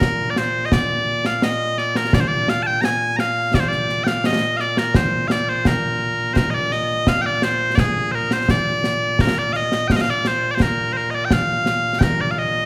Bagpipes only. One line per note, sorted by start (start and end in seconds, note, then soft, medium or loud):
0.00 12.65 A#2 medium
0.00 0.30 A#4 medium
0.30 0.38 D5 medium
0.38 0.66 C5 medium
0.66 0.73 D#5 medium
0.73 1.26 D5 medium
1.26 1.36 F5 loud
1.36 1.43 F5 medium
1.43 1.78 D#5 medium
1.78 1.97 D5 medium
1.97 2.14 A#4 medium
2.14 2.20 D5 medium
2.20 2.28 C5 medium
2.28 2.49 D5 medium
2.49 2.63 F5 loud
2.63 2.67 A5 loud
2.67 2.81 G5 loud
2.81 3.16 G#5 loud
2.81 2.85 A#5 loud
3.16 3.55 F5 loud
3.16 3.20 A#5 loud
3.55 3.60 D5 loud
3.60 3.68 C5 medium
3.68 4.04 D5 medium
4.04 4.26 F5 medium
4.04 4.07 G5 medium
4.26 4.57 D#5 medium
4.57 4.79 D5 medium
4.57 4.60 F5 medium
4.79 4.96 A#4 loud
4.96 5.28 C5 medium
5.28 5.49 D5 medium
5.28 5.32 F5 medium
5.49 5.67 C5 medium
5.67 6.34 A#4 medium
6.34 6.50 A#4 medium
6.34 6.37 C5 medium
6.50 6.72 D5 loud
6.50 6.54 D#5 medium
6.72 7.08 D#5 loud
7.08 7.22 F5 loud
7.22 7.26 G5 loud
7.26 7.43 D5 loud
7.43 7.75 C5 loud
7.75 7.79 D5 medium
7.79 8.11 G#4 medium
8.11 8.33 A#4 medium
8.11 8.15 C5 medium
8.33 8.51 C5 loud
8.51 9.21 D5 loud
9.21 9.39 A#4 medium
9.39 9.53 D5 loud
9.53 9.88 D#5 loud
9.53 9.56 F5 loud
9.88 9.92 G5 loud
9.92 9.96 F5 loud
9.96 10.01 D#5 loud
10.01 10.10 F5 loud
10.10 10.27 D5 loud
10.27 10.51 C5 loud
10.51 10.62 C5 medium
10.51 10.55 D5 medium
10.62 10.93 A#4 medium
10.93 10.97 C5 medium
10.97 11.11 A#4 medium
11.11 11.15 D#5 medium
11.15 11.25 D5 loud
11.25 11.33 G5 medium
11.33 11.99 F5 loud
11.99 12.21 A#4 medium
11.99 12.03 G5 medium
12.21 12.31 D5 loud
12.31 12.38 F5 medium
12.38 12.65 D#5 loud